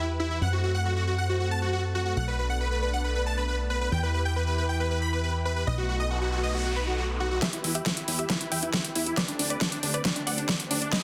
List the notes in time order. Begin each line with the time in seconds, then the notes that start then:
Already playing: E2 E3 E4 G4 B4
0.20 E4
0.31 E4
0.41 F#2 A3 C4 F#4 F#5
0.53 F#4
0.63 F#4
0.74 F#5
0.85 F#4
0.96 F#4
1.07 F#4
1.18 F#5
1.29 F#4
1.40 F#4
1.51 A5
1.62 F#4
1.73 F#4
1.95 F#4
2.06 F#4
2.17 B1 B3 D4 F#5
2.28 B4
2.39 B4
2.50 F#5
2.61 B4
2.71 B4
2.82 B4
2.93 F#5
3.04 B4
3.15 B4
3.26 A5
3.37 B4
3.48 B4
3.70 B4
3.81 B4
3.92 E2 E3 E4 G4 B4 G5
4.03 B4
4.14 B4
4.25 G5
4.36 B4
4.47 B4
4.58 B4
4.69 G5
4.80 B4
4.91 B4
5.02 B5
5.13 B4
5.23 B4
5.45 B4
5.56 B4
5.67 B1 A3 B3 D#4 D#5, noise sweep
5.78 F#4
5.89 F#4
6.00 D#5
6.10 F#4
6.21 F#4
6.32 F#4
6.43 D#5
6.54 F#4
6.65 F#4
6.76 B4
6.87 F#4
6.98 F#4
7.20 F#4
7.31 F#4
7.42 E3 E4 G4 B4 E5, kick, snare, closed hi-hat
7.53 E4, closed hi-hat
7.64 E2 E4, open hi-hat
7.75 G4 E5, closed hi-hat
7.86 E4, kick, snare, closed hi-hat
7.97 E4, closed hi-hat
8.08 E2 E4, open hi-hat
8.19 G4 E5, closed hi-hat
8.29 E4, kick, snare, closed hi-hat
8.40 E4, closed hi-hat
8.51 E2 E5 G5, open hi-hat
8.62 E4, closed hi-hat
8.73 E4, kick, snare, closed hi-hat
8.85 closed hi-hat
8.95 E2 E4, open hi-hat
9.06 E4, closed hi-hat
9.17 D3 A3 C4 B4 D5, kick, snare, closed hi-hat
9.28 D4, closed hi-hat
9.39 D2 D4, open hi-hat
9.50 B4 D5, closed hi-hat
9.61 D4, kick, snare, closed hi-hat
9.72 D4, closed hi-hat
9.83 D2 D4, open hi-hat
9.94 B4 D5, closed hi-hat
10.05 D4, kick, snare, closed hi-hat
10.16 D4, closed hi-hat
10.27 D2 D5 F#5, open hi-hat
10.38 D4, closed hi-hat
10.49 D4, kick, snare, closed hi-hat
10.60 closed hi-hat
10.71 D2 D4, open hi-hat
10.81 D4, closed hi-hat
10.92 B3 D#4 B4 D#5, kick, snare, closed hi-hat